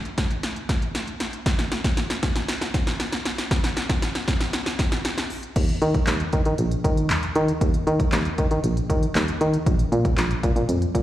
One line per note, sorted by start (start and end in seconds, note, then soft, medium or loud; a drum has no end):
0.05 closed hi-hat medium
0.18 kick loud
0.18 snare loud
0.18 closed hi-hat medium
0.31 closed hi-hat medium
0.43 snare loud
0.43 closed hi-hat loud
0.56 closed hi-hat medium
0.69 kick medium
0.69 snare loud
0.69 closed hi-hat medium
0.82 closed hi-hat medium
0.95 snare loud
0.95 closed hi-hat medium
1.08 closed hi-hat medium
1.20 snare loud
1.20 closed hi-hat medium
1.33 closed hi-hat medium
1.46 kick loud
1.46 snare loud
1.46 closed hi-hat medium
1.59 snare loud
1.59 closed hi-hat medium
1.72 snare loud
1.72 closed hi-hat medium
1.84 kick loud
1.84 snare loud
1.84 closed hi-hat medium
1.97 snare loud
1.97 closed hi-hat loud
2.10 snare loud
2.10 closed hi-hat medium
2.23 kick medium
2.23 snare loud
2.23 closed hi-hat medium
2.36 snare loud
2.36 closed hi-hat medium
2.48 snare loud
2.48 closed hi-hat loud
2.61 snare loud
2.61 closed hi-hat medium
2.74 kick medium
2.74 snare loud
2.74 closed hi-hat medium
2.87 snare loud
2.87 closed hi-hat medium
3.00 snare loud
3.00 closed hi-hat medium
3.12 snare loud
3.12 closed hi-hat medium
3.25 snare loud
3.25 closed hi-hat medium
3.38 snare loud
3.38 closed hi-hat medium
3.51 kick loud
3.51 snare loud
3.51 closed hi-hat medium
3.64 snare loud
3.64 closed hi-hat medium
3.77 snare loud
3.77 closed hi-hat medium
3.89 kick loud
3.89 snare loud
3.89 closed hi-hat medium
4.02 snare loud
4.02 closed hi-hat loud
4.15 snare loud
4.15 closed hi-hat medium
4.28 kick loud
4.28 snare loud
4.28 closed hi-hat medium
4.40 snare loud
4.40 closed hi-hat medium
4.53 snare loud
4.53 closed hi-hat loud
4.66 snare loud
4.66 closed hi-hat medium
4.79 kick medium
4.79 snare loud
4.79 closed hi-hat medium
4.92 snare loud
4.92 closed hi-hat medium
5.05 snare loud
5.05 closed hi-hat medium
5.18 snare loud
5.18 closed hi-hat medium
5.30 open hi-hat medium
5.43 closed hi-hat medium
5.56 5.73 D#2 loud
5.56 kick loud
5.56 closed hi-hat medium
5.56 crash loud
5.69 closed hi-hat medium
5.82 5.98 D#3 loud
5.82 closed hi-hat medium
5.94 kick loud
5.94 closed hi-hat medium
6.07 6.24 D#2 loud
6.07 snare loud
6.07 clap loud
6.07 closed hi-hat medium
6.20 closed hi-hat medium
6.33 6.41 D#3 loud
6.33 kick loud
6.33 closed hi-hat medium
6.45 6.54 D#3 loud
6.45 closed hi-hat medium
6.58 6.76 A#1 loud
6.58 closed hi-hat loud
6.71 closed hi-hat medium
6.84 7.11 D#3 loud
6.84 kick loud
6.84 closed hi-hat medium
6.97 closed hi-hat medium
7.10 7.27 D#2 loud
7.10 snare loud
7.10 clap loud
7.10 closed hi-hat medium
7.23 closed hi-hat medium
7.35 7.52 D#3 loud
7.35 closed hi-hat medium
7.48 closed hi-hat medium
7.61 7.78 D#2 loud
7.61 kick loud
7.61 closed hi-hat medium
7.74 closed hi-hat medium
7.87 8.04 D#3 loud
7.87 closed hi-hat medium
8.00 kick loud
8.00 closed hi-hat medium
8.12 8.29 D#2 loud
8.12 snare loud
8.12 clap loud
8.12 closed hi-hat loud
8.25 closed hi-hat medium
8.38 8.47 D#3 loud
8.38 kick medium
8.38 closed hi-hat medium
8.51 8.59 D#3 loud
8.51 closed hi-hat medium
8.64 8.81 A#1 loud
8.64 closed hi-hat loud
8.77 closed hi-hat medium
8.90 9.06 D#3 loud
8.90 kick loud
8.90 closed hi-hat medium
9.03 closed hi-hat medium
9.15 9.32 D#2 loud
9.15 snare loud
9.15 clap loud
9.15 closed hi-hat medium
9.28 closed hi-hat medium
9.41 9.58 D#3 loud
9.41 closed hi-hat medium
9.54 closed hi-hat medium
9.66 9.83 A#1 loud
9.66 kick loud
9.66 closed hi-hat medium
9.79 closed hi-hat medium
9.92 10.09 A#2 loud
9.92 closed hi-hat medium
10.05 kick loud
10.05 closed hi-hat medium
10.18 10.34 A#1 loud
10.18 snare loud
10.18 clap loud
10.18 closed hi-hat medium
10.31 closed hi-hat medium
10.43 10.52 A#2 loud
10.43 kick loud
10.43 closed hi-hat medium
10.56 10.64 A#2 loud
10.56 closed hi-hat medium
10.69 10.86 F2 medium
10.69 closed hi-hat loud
10.82 closed hi-hat medium
10.95 11.03 A#2 loud
10.95 kick medium
10.95 closed hi-hat medium